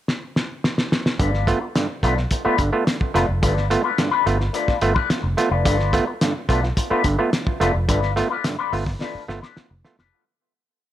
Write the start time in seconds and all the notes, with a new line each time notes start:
0.08 snare
0.36 snare
0.64 snare
0.78 snare
0.92 snare
1.06 snare
1.19 G1 G2 D3 A3 D4 F4 B4, kick, closed hi-hat
1.34 snare
1.47 A3 B3 F4, kick, closed hi-hat
1.61 B3 F4, muted clean electric guitar stroke
1.75 G2 D3, muted clean electric guitar stroke, snare, closed hi-hat
2.03 B1 A3 B3 D4 F4 B4, kick, closed hi-hat
2.17 B3 F4, muted clean electric guitar stroke, snare
2.31 muted clean electric guitar stroke, kick, closed hi-hat
2.45 A3 B3 D4 F4 B4, muted fingered electric bass stroke
2.58 G1 G2 D3, kick, closed hi-hat
2.73 A3 B3 F4, muted clean electric guitar stroke
2.87 muted clean electric guitar stroke, snare, closed hi-hat
3.01 kick
3.14 F1 A3 B3 D4 F4 B4, snare, closed hi-hat
3.29 F1, muted clean electric guitar stroke
3.42 G1 G2 D3 A3 D4 F4 B4, kick, closed hi-hat
3.57 snare
3.70 A3 B3 F4, muted clean electric guitar stroke, closed hi-hat
3.84 A3 B3 D4 F4 B4
3.98 G2 D3, muted clean electric guitar stroke, snare, closed hi-hat
4.11 A3 D4 F4 B4
4.26 G1 A3 B3 F4, muted clean electric guitar stroke, closed hi-hat
4.40 B3 F4, muted clean electric guitar stroke, snare
4.53 A3 D4 F4 B4, closed hi-hat
4.68 muted fingered electric bass stroke, kick, snare
4.81 G1 A3 B3 F4, closed hi-hat
4.95 A3 D4 F4 B4, kick
5.09 muted clean electric guitar stroke, muted fingered electric bass stroke, snare, closed hi-hat
5.23 F1, muted clean electric guitar stroke
5.37 A3 B3 F4, snare, closed hi-hat
5.51 F1 A3 D4 F4 B4
5.65 G1 G2 D3 A3 D4 F4 B4, kick, closed hi-hat
5.80 snare
5.93 A3 B3 F4, kick, closed hi-hat
6.07 B3 F4, muted clean electric guitar stroke
6.21 G2 D3, muted clean electric guitar stroke, snare, closed hi-hat
6.49 B1 A3 B3 D4 F4 B4, kick, closed hi-hat
6.63 B3 F4, muted clean electric guitar stroke, snare
6.77 muted clean electric guitar stroke, kick, closed hi-hat
6.90 A3 B3 D4 F4 B4, muted fingered electric bass stroke
7.04 G1 G2 D3, muted clean electric guitar stroke, kick, closed hi-hat
7.18 A3 B3 F4, muted clean electric guitar stroke
7.33 muted clean electric guitar stroke, snare, closed hi-hat
7.47 kick
7.60 F1 A3 B3 D4 F4 B4, snare, closed hi-hat
7.74 F1, muted clean electric guitar stroke
7.88 G1 G2 D3 A3 D4 F4 B4, kick, closed hi-hat
8.03 snare
8.16 A3 B3 F4, closed hi-hat
8.30 A3 B3 D4 F4 B4
8.44 G2 D3, snare, closed hi-hat
8.59 A3 D4 F4 B4
8.72 G1 A3 B3 F4, muted clean electric guitar stroke, open hi-hat
8.86 muted clean electric guitar stroke, kick, snare
9.00 A3 D4 F4 B4, snare
9.15 muted fingered electric bass stroke
9.28 G1 A3 B3 F4, muted clean electric guitar stroke, snare
9.42 A3 D4 F4 B4, snare
9.56 muted clean electric guitar stroke, muted fingered electric bass stroke, snare
9.70 F1, muted clean electric guitar stroke
9.84 A3 B3 F4, snare
9.98 F1 A3 D4 F4 B4, snare